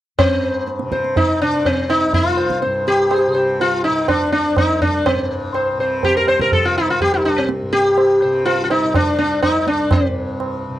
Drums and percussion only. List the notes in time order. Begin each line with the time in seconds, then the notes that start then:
0.19 tabla na, tabla ge
0.67 tabla te
0.79 tabla te
0.92 tabla ke
1.04 tabla te
1.16 tabla tin, tabla ge
1.65 tabla tin, tabla ge
1.90 tabla na
2.13 tabla tin, tabla ge
2.38 tabla na
2.50 tabla ke
2.63 tabla te
2.87 tabla te
3.11 tabla na
3.60 tabla tin
4.08 tabla na, tabla ge
4.33 tabla te
4.57 tabla na, tabla ge
4.82 tabla ge
5.06 tabla na, tabla ge
5.54 tabla na
6.03 tabla tin, tabla ge
6.28 tabla na
6.39 tabla ke
6.52 tabla tin, tabla ge
6.76 tabla na
7.01 tabla tin, tabla ge
7.25 tabla na
7.49 tabla te
7.73 tabla te
7.98 tabla na
8.46 tabla tin
8.70 tabla na
8.94 tabla na, tabla ge
9.19 tabla te
9.43 tabla na, tabla ge
9.67 tabla te
9.91 tabla na, tabla ge
10.40 tabla na